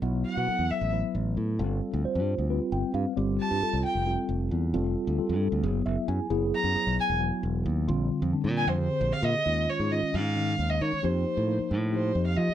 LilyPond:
<<
  \new Staff \with { instrumentName = "Violin" } { \time 7/8 \key g \lydian \tempo 4 = 134 r8 fis''4 e''8 r4. | r2. r8 | r8 a''4 g''8 r4. | r2. r8 |
r8 ais''4 gis''8 r4. | r4. gis''16 bis'16 bis'8. eis''16 dis''8~ | \key f \phrygian dis''8 des''8 ees''8 f''4~ f''16 ees''16 des''8 | c''4. r8 c''8. f''16 ees''8 | }
  \new Staff \with { instrumentName = "Tine electric piano" } { \time 7/8 \key g \lydian << { r2. r8 | r2 r8 g''8 f''8 | r2. r8 | r2 r8 e''8 gis''8 |
r2. r8 | r2. r8 | \key f \phrygian r2. r8 | r2. r8 | } \\ { <fis b e' fis'>4 <fis b e' a'>4 <fis b e' b'>4. | <g c' f' a'>4 <g c' f' c''>4 <g c' f' b'>4. | <g c' f' g'>4 <g c' f' a'>4 <g c' f' a'>4. | <g c' f' a'>4 <g c' f' a'>4 <fis b e' gis'>4. |
<fis b e' gis'>4 <fis b e' gis'>4 <fis b e' fis'>4. | <d g bis eis'>4 <d g bis d'>4 <d bis g' gis'>4. | <ees aes des' f'>4 <ees aes des' f'>4 <ees aes des' ees'>4. | <f bes ees' g'>4 <f bes ees' bes'>4 <f bes ees' g'>4. | } >> }
  \new Staff \with { instrumentName = "Fingered electric bass" } { \clef bass \time 7/8 \key g \lydian b,,8 r16 b,16 r16 e,16 r16 a,,8 r16 a,,8 a,8 | g,,8 r16 d,16 r16 g,8 d,8 r16 g,,16 r16 g,16 r16 | g,,8 r16 g,16 r16 c,16 r16 f,,8 r16 f,,8 e,8 | f,,8 r16 d,16 r16 g,8 d,16 fis,,8 fis,,16 r16 fis,16 r16 |
fis,,8 r16 fis,16 r16 b,,16 r16 e,,8 r16 e,,8 dis,8 | ais,,8 r16 eis,16 r16 ais,8 eis,8 r16 ais,,16 r16 ais,16 r16 | \key f \phrygian ees,8 r16 aes,8 r16 aes,4 ees,8 ees16 r16 | f,8 r16 a,8 r16 a,4 f,8 f16 r16 | }
>>